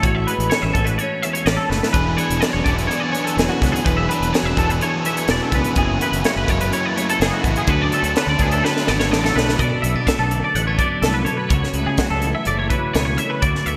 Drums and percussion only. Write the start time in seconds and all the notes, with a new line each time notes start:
0.03 kick, closed hi-hat
0.28 closed hi-hat
0.40 closed hi-hat
0.51 snare, closed hi-hat
0.75 kick, closed hi-hat
0.87 closed hi-hat
0.99 closed hi-hat
1.23 closed hi-hat
1.35 closed hi-hat
1.46 snare, closed hi-hat
1.71 snare
1.83 snare
1.94 kick, closed hi-hat
2.18 closed hi-hat
2.31 closed hi-hat
2.42 snare, closed hi-hat
2.66 kick, closed hi-hat
2.78 closed hi-hat
2.91 closed hi-hat
3.15 closed hi-hat
3.27 closed hi-hat
3.38 snare, closed hi-hat
3.62 kick, snare, closed hi-hat
3.76 closed hi-hat
3.86 kick, closed hi-hat
4.11 closed hi-hat
4.23 closed hi-hat
4.34 snare, closed hi-hat
4.57 kick, closed hi-hat
4.70 closed hi-hat
4.81 closed hi-hat
5.05 closed hi-hat
5.17 closed hi-hat
5.28 snare, closed hi-hat
5.52 kick, closed hi-hat
5.64 closed hi-hat
5.76 kick, closed hi-hat
6.01 closed hi-hat
6.13 closed hi-hat
6.24 snare, closed hi-hat
6.48 kick, closed hi-hat
6.61 closed hi-hat
6.73 closed hi-hat
6.98 closed hi-hat
7.09 closed hi-hat
7.21 snare, closed hi-hat
7.44 kick, closed hi-hat
7.56 closed hi-hat
7.67 kick, closed hi-hat
7.92 closed hi-hat
8.04 closed hi-hat
8.16 snare, closed hi-hat
8.39 kick, closed hi-hat
8.51 closed hi-hat
8.65 snare
8.77 snare
8.87 snare
9.00 snare
9.13 snare
9.25 snare
9.38 snare
9.49 snare
9.59 kick, closed hi-hat
9.84 closed hi-hat
10.07 kick, snare, closed hi-hat
10.31 closed hi-hat
10.55 closed hi-hat
10.79 kick, closed hi-hat
11.03 snare, closed hi-hat
11.26 closed hi-hat
11.50 kick, closed hi-hat
11.64 snare
11.74 closed hi-hat
11.98 kick, snare, closed hi-hat
12.22 closed hi-hat
12.45 closed hi-hat
12.70 kick, closed hi-hat
12.95 snare, closed hi-hat
13.18 closed hi-hat
13.42 kick, closed hi-hat
13.55 snare
13.66 closed hi-hat